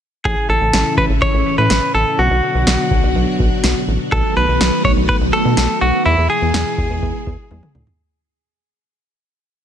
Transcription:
0.25 0.35 A1 loud
0.25 2.17 A2 medium
0.25 2.17 C#3 medium
0.25 2.17 E3 medium
0.25 2.17 C#4 medium
0.25 2.17 E4 medium
0.25 0.49 G#4 medium
0.25 kick loud
0.49 0.59 A1 medium
0.49 0.94 A4 loud
0.61 0.72 A1 loud
0.73 0.84 A1 loud
0.73 snare loud
0.97 1.08 A1 loud
0.97 1.04 B4 medium
0.97 kick medium
1.10 1.20 A1 loud
1.22 1.56 C#5 loud
1.22 kick medium
1.34 1.44 A1 medium
1.58 1.68 A2 medium
1.58 1.94 B4 loud
1.70 1.80 A1 loud
1.70 snare loud
1.94 2.05 A1 medium
1.94 2.19 A4 medium
2.18 2.29 B1 loud
2.18 4.10 B2 medium
2.18 4.10 D3 medium
2.18 4.10 F#3 medium
2.18 4.10 D4 medium
2.18 4.10 F#4 medium
2.18 3.84 F#4 medium
2.31 2.41 B1 loud
2.55 2.65 B1 loud
2.67 2.77 B1 medium
2.67 snare loud
2.91 3.01 B1 loud
2.91 kick medium
3.03 3.14 B1 loud
3.15 3.26 B1 loud
3.40 3.50 B1 loud
3.40 kick medium
3.64 3.74 B1 loud
3.64 snare loud
3.88 3.98 A1 medium
4.12 4.22 B1 loud
4.12 6.04 D#3 medium
4.12 6.04 F#3 medium
4.12 6.04 A3 medium
4.12 6.04 B3 medium
4.12 6.04 F#4 medium
4.12 4.35 A4 loud
4.12 kick loud
4.36 4.47 B1 loud
4.36 4.82 B4 loud
4.48 4.59 B1 loud
4.60 4.71 B1 medium
4.60 snare loud
4.84 4.95 B1 loud
4.84 4.91 C#5 loud
4.84 kick medium
4.97 5.07 B1 medium
5.09 5.15 B4 loud
5.09 kick medium
5.21 5.31 B1 loud
5.33 5.81 A4 loud
5.45 5.55 B2 medium
5.57 5.68 B1 medium
5.57 snare loud
5.81 5.92 B1 medium
5.81 6.05 F#4 medium
6.06 6.16 E2 loud
6.06 7.97 B2 medium
6.06 7.97 E3 medium
6.06 7.97 G#3 medium
6.06 6.29 E4 medium
6.06 7.97 E4 medium
6.06 7.97 G#4 medium
6.18 6.28 E2 medium
6.30 7.71 G#4 medium
6.42 6.52 E2 loud
6.54 6.64 E2 loud
6.54 snare loud
6.78 6.88 E2 medium
6.78 kick loud
6.90 7.01 E2 medium
7.02 7.13 E2 loud
7.02 kick medium
7.27 7.37 E2 loud
7.27 kick medium
7.51 7.61 E2 loud
7.51 high tom medium
7.63 mid tom medium
7.75 7.85 D2 medium
7.75 mid tom medium
7.87 floor tom medium

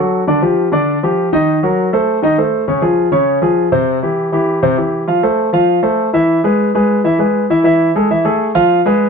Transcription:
0.00 0.21 F#3 medium
0.00 0.21 F#4 medium
0.00 0.22 A4 medium
0.27 0.40 D3 medium
0.27 0.40 D4 medium
0.27 0.40 D5 medium
0.42 0.67 F3 medium
0.42 0.67 F4 medium
0.42 0.67 G4 medium
0.72 0.97 D3 medium
0.72 0.97 D4 medium
0.72 0.97 D5 medium
1.03 1.27 F3 medium
1.03 1.28 F4 medium
1.03 1.28 G4 medium
1.33 1.57 D#3 medium
1.33 1.57 D#4 medium
1.33 1.57 D#5 medium
1.63 1.87 F#3 medium
1.63 1.87 F#4 medium
1.63 1.88 A#4 medium
1.93 2.17 A3 medium
1.93 2.18 A4 medium
1.93 2.18 C5 medium
2.22 2.35 D#3 medium
2.22 2.35 D#4 medium
2.22 2.35 D#5 medium
2.38 2.63 A3 medium
2.38 2.63 A4 medium
2.38 2.63 C5 medium
2.68 2.80 C#3 medium
2.68 2.80 C#4 medium
2.68 2.80 C#5 medium
2.82 3.07 F3 medium
2.82 3.07 F4 medium
2.82 3.07 G#4 medium
3.12 3.37 C#3 medium
3.12 3.37 C#4 medium
3.12 3.37 C#5 medium
3.42 3.67 F3 medium
3.42 3.67 F4 medium
3.42 3.67 G#4 medium
3.72 3.97 C3 medium
3.72 3.97 C4 medium
3.72 3.97 C5 medium
4.03 4.28 E3 medium
4.03 4.27 E4 medium
4.03 4.28 G4 medium
4.32 4.57 E3 medium
4.32 4.57 E4 medium
4.32 4.58 G4 medium
4.63 4.75 C3 medium
4.63 4.75 C4 medium
4.63 4.75 C5 medium
4.77 5.02 E3 medium
4.77 5.02 E4 medium
4.77 5.03 G4 medium
5.08 5.20 F3 medium
5.08 5.20 F4 medium
5.08 5.21 F5 medium
5.23 5.48 A3 medium
5.23 5.48 A4 medium
5.23 5.48 C5 medium
5.53 5.78 F3 medium
5.53 5.78 F4 medium
5.53 5.78 F5 medium
5.83 6.08 A3 medium
5.83 6.08 A4 medium
5.83 6.08 C5 medium
6.13 6.38 E3 medium
6.13 6.38 E4 medium
6.13 6.39 E5 medium
6.44 6.68 G#3 medium
6.44 6.69 G#4 medium
6.44 6.69 B4 medium
6.75 6.99 G#3 medium
6.75 6.99 G#4 medium
6.75 6.99 B4 medium
7.04 7.16 E3 medium
7.04 7.17 E4 medium
7.04 7.17 E5 medium
7.19 7.44 G#3 medium
7.19 7.44 G#4 medium
7.19 7.44 B4 medium
7.50 7.62 E3 medium
7.50 7.62 E4 medium
7.50 7.62 E5 medium
7.64 7.89 E3 medium
7.64 7.89 E4 medium
7.64 7.89 E5 medium
7.95 8.07 G#3 medium
7.95 8.07 G#4 medium
7.95 8.08 A4 medium
8.11 8.22 E3 medium
8.11 8.22 E4 medium
8.11 8.22 E5 medium
8.25 8.49 A3 medium
8.25 8.49 G#4 medium
8.25 8.50 A4 medium
8.55 8.79 F3 medium
8.55 8.79 F4 medium
8.55 8.79 F5 medium
8.85 9.09 G#3 medium
8.85 9.09 G#4 medium
8.85 9.09 B4 medium

